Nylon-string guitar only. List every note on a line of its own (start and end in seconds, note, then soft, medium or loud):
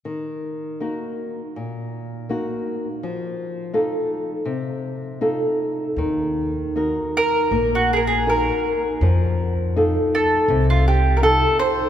0.05 0.78 D#3 soft
0.80 1.41 A#3 soft
0.80 1.41 D#4 soft
0.80 1.41 F#4 soft
1.56 2.28 A#2 soft
2.29 2.87 A#3 soft
2.29 2.87 D#4 soft
2.29 2.88 F#4 soft
3.03 3.71 F3 soft
3.74 4.31 D#4 soft
3.74 4.31 F4 soft
3.74 4.31 A4 soft
4.45 5.19 C3 soft
5.21 5.83 D#4 soft
5.21 5.83 F4 soft
5.21 5.83 A4 soft
5.98 6.73 D#3 soft
6.76 7.37 D#4 soft
6.76 7.37 F#4 soft
6.76 7.38 A#4 soft
7.52 8.25 A#3 medium
8.27 8.86 D#4 soft
8.27 8.87 F#4 soft
8.27 8.87 A#4 soft
9.02 9.74 F3 medium
9.76 10.35 D#4 soft
9.76 10.35 F4 soft
9.76 10.35 A4 soft
10.50 11.20 C3 medium
11.22 11.80 D#4 soft
11.22 11.80 F4 soft
11.22 11.80 A4 medium